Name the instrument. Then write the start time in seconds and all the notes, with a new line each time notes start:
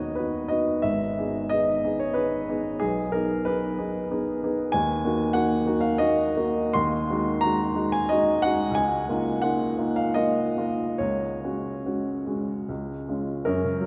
upright piano
Already playing: D#2 B3 D#4 F#4 B4 C#5 D#5
0.15 B3 D#4 F#4 B4
0.48 B3 D#4 F#4 D#5
0.82 G#1 E5
1.18 B3 D#4 G#4
1.49 B3 D#4 G#4 D#5
1.84 B3 D#4 G#4
1.99 C#5
2.14 B3 D#4 G#4 B4
2.48 B3 D#4 G#4
2.79 B1 G#4
3.12 B3 D#4 G#4 A#4
3.45 B3 D#4 G#4 B4
3.78 B3 D#4 G#4
4.11 B3 D#4 G#4
4.43 B3 D#4 G#4
4.72 D#2 G#5
5.05 A#3 D#4 F#4
5.33 A#3 D#4 F#4 F#5
5.66 A#3 D#4 F#4
5.81 F5
5.98 A#3 D#4 F#4 D#5
6.37 A#3 D#4 F#4
6.73 D#2 C6
7.10 G#3 D#4 F#4
7.41 G#3 D#4 F#4 A#5
7.75 G#3 D#4 F#4
7.92 G#5
8.09 G#3 D#4 F#4 D#5
8.42 G#3 D#4 F#4 F#5
8.71 C#2 G#5
9.09 A#3 D#4 F4
9.42 A#3 D#4 F4 F#5
9.78 A#3 D#4 F4
9.96 F5
10.14 A#3 D#4 F4 D#5
10.57 A#3 D#4 F4
10.98 C#2 C#5
11.44 G#3 C#4 F#4
11.86 G#3 C#4 F#4
12.27 G#3 C#4 F#4
12.69 C#2
13.09 G#3 C#4 F4
13.45 F#2 C#4 A#4
13.64 C#3
13.81 F#3